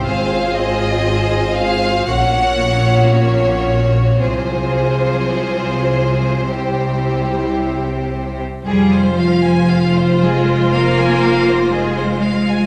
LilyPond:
<<
  \new Staff \with { instrumentName = "Violin section" } { \time 4/4 \key f \minor \tempo 4 = 58 f''8 ees''4 f''8 ges''4 des''4 | c''2. r4 | c''1 | }
  \new Staff \with { instrumentName = "Violin section" } { \time 4/4 \key f \minor << { c''2 des''2 | c''1 | aes'16 c''16 f''16 aes''16 f''16 c''16 aes'16 c''16 f''16 aes''16 f''16 c''16 aes'16 c''16 f''16 aes''16 | } \\ { aes'2 ges'2 | aes'2 g'2 | r1 | } >> }
  \new Staff \with { instrumentName = "Viola section" } { \time 4/4 \key f \minor <c' f'>2 <bes des'>2 | <f f'>2 <g e'>2 | f'1 | }
  \new Staff \with { instrumentName = "Cello section" } { \clef bass \time 4/4 \key f \minor aes,2 bes,2 | c1 | g8 f4 aes8 bes4 aes4 | }
  \new Staff \with { instrumentName = "Double bass section" } { \clef bass \time 4/4 \key f \minor aes,,2 bes,,2 | c,1 | f,,1 | }
>>